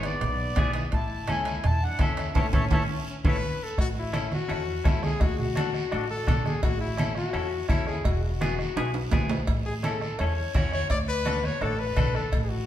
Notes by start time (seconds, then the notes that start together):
Already playing: G#1 B3 E4 G#4
0.03 B3 D5, bombo rim, high timbale, short guiro
0.21 B1, bombo rim, low conga, high timbale, long guiro
0.56 B1 B3 E4 G#4, bombo low, bombo rim, high conga, high timbale, low timbale, short guiro
0.73 bombo rim, high timbale, short guiro
0.92 A1 E4 A5, bombo low, bombo rim, high timbale, long guiro
1.28 C#2 C#4 E4 A4 G#5, bombo rim, high conga, high timbale, short guiro
1.45 bombo rim, high timbale, short guiro
1.64 E2 E4 A5, bombo rim, low conga, high timbale, long guiro
1.83 D4 F#5
1.99 E2 C#4 E4 A4 E5, bombo low, bombo rim, high conga, high timbale, short guiro
2.17 bombo rim, high timbale, short guiro
2.35 A1 A3 C#4 E4 A4 C#5 E5 A5, bombo low, high conga, high timbale, long guiro
2.53 A1 C#4 E4 A4 C#5 E5 A5, bombo low, high conga, high timbale, long guiro
2.71 A1 C#4 E4 A4 C#5 E5 A5, bombo low, high conga, high timbale, long guiro
3.10 C#4
3.24 A1 C#4 E4 A4 B4 C#5 E5 A5, bombo low, high conga, high timbale, long guiro
3.64 A4
3.78 A1 F#4, bombo low, bombo rim, cowbell, high conga
3.99 E4
4.13 C#4 E4 A4, bombo rim, cowbell, high conga, short guiro
4.31 F#4, bombo rim, high conga, short guiro
4.49 E2 C#4 E4 A4, bombo rim, cowbell, long guiro
4.68 high conga
4.84 C#2 C#4 E4 A4, bombo low, bombo rim, cowbell, high conga, short guiro
5.03 G#4, bombo rim, high conga, short guiro
5.20 D2 F#4, bombo low, bombo rim, cowbell, high conga, long guiro
5.39 F#4, low conga
5.56 D4 F#4 A4, bombo rim, cowbell, high conga, short guiro
5.74 bombo rim, short guiro
5.92 A1 D4 F#4 A4, bombo rim, cowbell, long guiro
6.10 A4, high conga
6.27 A1 D4 F#4 A4, bombo low, bombo rim, cowbell, high conga, low conga, short guiro
6.46 G#4, bombo rim, high conga, short guiro
6.63 A1 F#4, bombo low, bombo rim, cowbell, high conga, long guiro
6.81 E4
6.97 C#4 E4 A4, bombo rim, cowbell, high conga, short guiro
7.15 F#4, bombo rim, short guiro
7.33 E2 C#4 E4 A4, bombo rim, cowbell, long guiro
7.53 high conga
7.69 E2 C#4 E4 A4, bombo low, bombo rim, cowbell, high conga, short guiro
7.87 G#4, bombo rim, short guiro
8.04 E1 F#4, bombo low, bombo rim, cowbell, high conga, long guiro
8.24 F#4
8.41 B3 E4 G#4, bombo rim, cowbell, high conga, short guiro
8.59 bombo rim, short guiro
8.76 B1 B3 E4 G#4, bombo rim, cowbell, high timbale, long guiro
8.94 high conga, high timbale
9.11 B1 B3 E4 G#4, bombo low, bombo rim, cowbell, high conga, low conga, low timbale, short guiro
9.30 bombo rim, low timbale, short guiro
9.47 A1, bombo low, bombo rim, cowbell, high conga, long guiro
9.66 G#4
9.83 C#4 E4 A4, bombo rim, cowbell, high conga, short guiro
10.01 bombo rim, short guiro
10.19 E2 C#4 E4 A4 C#5, bombo rim, cowbell, long guiro
10.38 high conga
10.54 E2 C#4 E4 F#4 C#5, bombo low, bombo rim, cowbell, high conga, short guiro
10.72 C#5, bombo rim, short guiro
10.90 D2 D5, bombo low, bombo rim, cowbell, long guiro
11.08 B4
11.25 D4 F#4 A4, bombo rim, cowbell, high conga, short guiro
11.43 C#5, bombo rim, high conga, short guiro
11.61 A1 D4 F#4 A4, bombo rim, cowbell, long guiro
11.79 B4, high conga
11.96 A1 D4 F#4 A4, bombo low, bombo rim, cowbell, high conga, low conga, short guiro
12.15 A4, bombo rim, short guiro
12.32 A1, bombo low, bombo rim, cowbell, high conga, long guiro
12.43 G#4
12.50 F#4